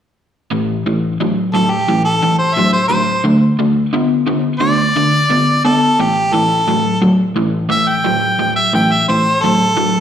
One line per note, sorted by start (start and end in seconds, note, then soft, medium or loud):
0.52 0.82 A2 medium
0.52 0.83 E3 medium
0.86 1.17 A2 medium
0.86 1.17 E3 medium
1.20 1.51 A2 medium
1.20 1.51 F#3 medium
1.54 1.85 A2 medium
1.54 1.85 F#3 medium
1.54 1.72 A4 medium
1.70 2.04 G4 medium
1.88 2.19 A2 medium
1.88 2.19 E3 medium
2.05 2.38 A4 medium
2.23 2.54 A2 medium
2.23 2.54 E3 medium
2.39 2.56 C5 medium
2.55 2.88 A2 medium
2.55 2.88 F#3 medium
2.55 2.72 E5 medium
2.73 2.88 C5 medium
2.88 3.21 A2 medium
2.88 3.21 F#3 medium
2.88 3.23 C5 medium
3.24 3.56 D3 medium
3.24 3.56 A3 medium
3.59 3.91 D3 medium
3.59 3.91 A3 medium
3.93 4.25 D3 medium
3.93 4.25 B3 medium
4.27 4.59 D3 medium
4.27 4.59 B3 medium
4.59 4.93 D3 medium
4.59 4.93 A3 medium
4.59 5.61 D5 medium
4.96 5.27 D3 medium
4.96 5.28 A3 medium
5.30 5.61 D3 medium
5.30 5.62 B3 medium
5.65 5.96 D3 medium
5.65 5.96 B3 medium
5.65 6.02 A4 medium
6.00 6.31 A2 medium
6.00 6.31 E3 medium
6.00 6.35 G4 medium
6.33 6.65 A2 medium
6.33 6.65 E3 medium
6.33 7.00 A4 medium
6.69 6.99 A2 medium
6.69 7.00 F#3 medium
7.02 7.33 A2 medium
7.02 7.33 F#3 medium
7.36 7.67 A2 medium
7.36 7.68 E3 medium
7.69 8.01 A2 medium
7.69 8.02 E3 medium
7.69 7.89 E5 loud
7.88 8.55 G5 medium
8.04 8.36 A2 medium
8.04 8.36 F#3 medium
8.39 8.71 A2 medium
8.39 8.71 F#3 medium
8.56 8.73 E5 medium
8.73 9.05 A2 medium
8.73 9.05 E3 medium
8.73 8.93 G5 medium
8.92 9.08 E5 medium
9.08 9.40 A2 medium
9.08 9.40 E3 medium
9.08 9.44 C5 medium
9.43 9.75 A2 medium
9.43 9.75 F#3 medium
9.43 10.00 A4 loud
9.77 10.00 A2 medium
9.77 10.00 F#3 medium